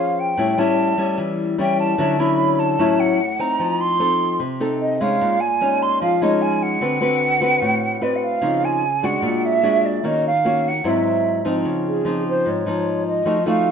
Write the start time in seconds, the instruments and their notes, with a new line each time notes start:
Already playing: nylon-string guitar F3 C#4 G#4 C5, flute F5
0.20 flute G5
0.37 nylon-string guitar A2 G3 C#4 E4
0.58 nylon-string guitar G3 C#4 E4, flute A5
0.98 nylon-string guitar G3 C#4 E4
1.18 nylon-string guitar E3
1.58 nylon-string guitar G3 C#4 E4, flute G5
1.80 flute A5
1.98 nylon-string guitar D3 F#3 C#4 E4
2.19 nylon-string guitar F#3 C#4 E4, flute B5
2.59 flute A5
2.79 nylon-string guitar A2 F#3 C#4 E4
3.00 flute F#5
3.39 nylon-string guitar C4 D#4, flute A#5
3.59 nylon-string guitar F3
3.81 flute C6
3.99 nylon-string guitar C4 D#4 A4
4.40 nylon-string guitar C3
4.60 nylon-string guitar C4 D#4 A4
4.81 flute D#5
5.01 nylon-string guitar G#3 C#4 D#4, flute F5
5.21 nylon-string guitar A#2
5.40 flute G#5
5.61 nylon-string guitar G#3 C#4 D#4
5.83 flute C6
6.01 nylon-string guitar F3, flute F5
6.22 nylon-string guitar G#3 C#4 D#4, flute D#5
6.42 flute G#5
6.63 flute F#5
6.81 nylon-string guitar D3 C4 F#4 B4
7.01 nylon-string guitar C4 F#4 B4
7.41 nylon-string guitar C4 F#4 B4
7.62 nylon-string guitar A2
8.01 nylon-string guitar C4 F#4 B4, flute D5
8.16 flute F#5
8.24 flute F5
8.41 nylon-string guitar C#3 F3 C4 D#4
8.65 flute G#5
9.03 nylon-string guitar G#3 D4 F#4, flute F#5
9.22 nylon-string guitar A#2
9.45 flute E5
9.63 nylon-string guitar G#3 D4 F#4
9.86 flute D5
10.04 nylon-string guitar D#3 A#3 C#4 F#4, flute D#5
10.27 flute F5
10.45 nylon-string guitar A#3 C#4 F#4
10.68 flute F#5
10.84 nylon-string guitar G#2 F#3 C4 E4
10.89 flute E5
11.45 nylon-string guitar F3 C4 D#4
11.65 nylon-string guitar C#3
11.88 flute G#4
12.05 nylon-string guitar F3 C4 D#4
12.29 flute C5
12.46 nylon-string guitar G#2
12.50 flute C#5
12.66 nylon-string guitar F3 D#4
13.07 flute D#5
13.25 nylon-string guitar F3 A3 D#4 F#4
13.46 nylon-string guitar A3 D#4 F#4, flute F5